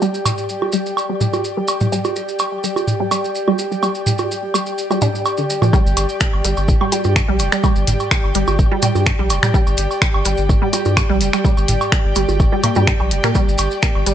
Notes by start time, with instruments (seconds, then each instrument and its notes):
Already playing: analog synth pad G4 D5 G5
0.02 synth arpeggio sound G3, maracas
0.14 maracas
0.26 mid tom, high woodblock, maracas
0.38 maracas
0.49 maracas
0.62 low bongo, high woodblock
0.72 synth arpeggio sound G3, maracas
0.86 maracas
0.97 high woodblock, maracas
1.09 synth arpeggio sound G3
1.21 synth arpeggio sound G3, mid tom, maracas
1.34 low bongo, high woodblock, maracas
1.44 maracas
1.57 synth arpeggio sound G3
1.68 high woodblock, maracas
1.80 synth arpeggio sound G3, mid tom, maracas
1.92 synth arpeggio sound G3, maracas
2.05 low bongo, high woodblock, maracas
2.16 maracas
2.29 maracas
2.39 high woodblock, maracas
2.64 synth arpeggio sound G3, maracas
2.76 low bongo, high woodblock, maracas
2.88 mid tom, maracas
3.00 synth arpeggio sound G3
3.11 synth arpeggio sound G3, high woodblock, maracas
3.25 maracas
3.35 maracas
3.48 synth arpeggio sound G3, low bongo, high woodblock
3.59 maracas
3.71 synth arpeggio sound G3, maracas
3.83 synth arpeggio sound G3, high woodblock, maracas
3.95 maracas
4.07 mid tom, maracas
4.18 low bongo, high woodblock, maracas
4.31 maracas
4.54 synth arpeggio sound G3, high woodblock, maracas
4.66 maracas
4.78 maracas
4.91 synth arpeggio sound G3, low bongo, high woodblock, maracas
5.01 synth arpeggio sound D4, mid tom, maracas
5.15 maracas
5.25 high woodblock, maracas
5.37 synth arpeggio sound D3, maracas
5.50 maracas
5.62 synth arpeggio sound F3, mid tom, low bongo, high woodblock, maracas
5.73 synth arpeggio sound G3, kick, high woodblock, maracas
5.86 sub bass G1, maracas
5.97 sub bass G1, closed hi-hat, high woodblock, maracas
6.09 maracas
6.21 finger snap, kick, maracas
6.33 sub bass G1, high woodblock
6.45 sub bass G1, synth arpeggio sound G3, closed hi-hat, maracas
6.57 sub bass G1, high woodblock, maracas
6.68 kick, mid tom, maracas
6.81 synth arpeggio sound G3, high woodblock
6.92 synth arpeggio sound G3, closed hi-hat, low bongo, maracas
7.04 sub bass G2, low bongo, maracas
7.16 finger snap, kick, high woodblock, maracas
7.28 sub bass A#1, synth arpeggio sound G3
7.39 sub bass F1, closed hi-hat, high woodblock, maracas
7.52 synth arpeggio sound G3, finger snap, maracas
7.63 synth arpeggio sound G3, kick, high woodblock, maracas
7.76 sub bass G1, maracas
7.87 sub bass G1, closed hi-hat, mid tom, maracas
8.00 high woodblock, maracas
8.11 finger snap, kick, maracas
8.24 sub bass G1, high woodblock
8.35 sub bass G1, synth arpeggio sound G3, closed hi-hat, maracas
8.47 sub bass G1, low bongo, high woodblock, maracas
8.59 kick, maracas
8.71 synth arpeggio sound G3, low bongo
8.82 synth arpeggio sound G3, closed hi-hat, mid tom, high woodblock, maracas
8.95 sub bass G2, low bongo, maracas
9.06 finger snap, kick, high woodblock, maracas
9.19 sub bass A#1, synth arpeggio sound G3
9.30 sub bass F1, closed hi-hat, high woodblock, maracas
9.43 synth arpeggio sound G3, finger snap, mid tom, maracas
9.54 synth arpeggio sound G3, kick, maracas
9.67 sub bass G1, high woodblock, maracas
9.77 sub bass G1, closed hi-hat, maracas
9.91 high woodblock, maracas
10.02 finger snap, kick, maracas
10.14 sub bass G1, high woodblock
10.25 sub bass G1, synth arpeggio sound G3, closed hi-hat, maracas
10.37 sub bass G1, maracas
10.49 kick, mid tom, high woodblock, maracas
10.62 synth arpeggio sound G3
10.73 synth arpeggio sound G3, closed hi-hat, low bongo, high woodblock, maracas
10.85 sub bass G2, low bongo, maracas
10.97 finger snap, kick, high woodblock, maracas
11.09 sub bass A#1, synth arpeggio sound G3
11.21 sub bass F1, closed hi-hat, maracas
11.33 synth arpeggio sound G3, finger snap, high woodblock, maracas
11.44 synth arpeggio sound G3, kick, maracas
11.57 sub bass G1, high woodblock, maracas
11.68 sub bass G1, closed hi-hat, mid tom, maracas
11.81 high woodblock, maracas
11.92 finger snap, kick, maracas
12.05 sub bass G1
12.15 sub bass G1, synth arpeggio sound G3, closed hi-hat, high woodblock, maracas
12.29 sub bass G1, low bongo, maracas
12.40 kick, high woodblock, maracas
12.52 synth arpeggio sound G3, low bongo
12.63 synth arpeggio sound A#3, closed hi-hat, mid tom, high woodblock, maracas
12.75 sub bass G2, synth arpeggio sound G3, low bongo, maracas
12.87 synth arpeggio sound G3, finger snap, kick, maracas
13.00 sub bass A#1, synth arpeggio sound G3, high woodblock
13.11 sub bass F1, closed hi-hat, maracas
13.24 synth arpeggio sound A#3, finger snap, mid tom, low bongo, high woodblock, maracas
13.35 synth arpeggio sound G3, kick, high woodblock, maracas
13.48 sub bass G1, maracas
13.58 sub bass G1, closed hi-hat, high woodblock, maracas
13.71 maracas
13.83 finger snap, kick, maracas
13.95 sub bass G1, high woodblock
14.06 sub bass G1, synth arpeggio sound G3, closed hi-hat, maracas